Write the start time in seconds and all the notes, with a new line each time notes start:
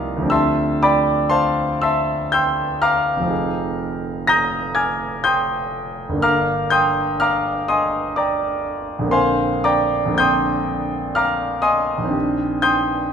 Already playing: C2 F3 A#3 D#4 G4 D#5 F5 G#5 A#5 C6 D6 D#6 F6
0.17 D2 F3
0.22 C4 D4
0.29 G4 E5 A5 C6 E6
0.83 D5 G5 B5 D6
1.30 C5 F5 A5 C6
1.82 E5 A5 C6 E6
2.32 G5 C6 E6 G6
2.82 F5 A#5 D6 F6
3.16 F1 F3
3.22 C4 D#4
3.29 G#4
4.27 A#5 D#6 G6 A#6
4.75 G#5 D6 F6 G#6
5.24 G5 C6 D#6 G6
6.09 G1 D3
6.15 A#3 D4
6.21 A#4 F5 A#5 D6 F6
6.70 G5 C6 D#6 G6
7.20 F5 A#5 D6 F6
7.68 D#5 G#5 C6 D#6
8.16 D5 G5 A#5 D6
8.99 A#1 D3
9.04 A#3 C4
9.10 A#4 C5 F5 G#5 C6
9.64 D5 G5 A#5 D6
10.06 A#1 D3
10.11 A#3 C4
10.17 A#4 G5 C6 D#6 G6
11.15 F5 A#5 D6 F6
11.62 D#5 G#5 C6 D#6
11.98 A#1 D#3
12.04 C4 D4
12.11 G4
12.62 G5 C6 D#6 G6